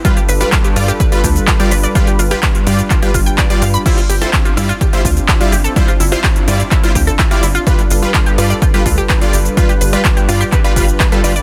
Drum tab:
CC |----------------|----------------|x---------------|----------------|
HH |xxoxxxoxxxoxxxox|xxoxxxoxxxoxxxox|xxoxxxoxxxoxxxox|xxoxxxoxxxoxxxox|
SH |xxxxxxxxxxxxxxxx|xxxxxxxxxxxxxxxx|xxxxxxxxxxxxxxxx|xxxxxxxxxxxxxxxx|
CP |----x-------x---|----x---x---x---|----x-------x---|----x---x---x---|
BD |o---o---o-o-o---|o---o---o-o-o---|o---o---o-o-o---|o---o---o-o-o---|

CC |----------------|----------------|
HH |xxoxxxoxxxoxxxox|xxoxxxoxxxoxxxox|
SH |xxxxxxxxxxxxxxxx|xxxxxxxxxxxxxxxx|
CP |----x-------x---|----x---x---x---|
BD |o---o---o-o-o---|o---o---o-o-o---|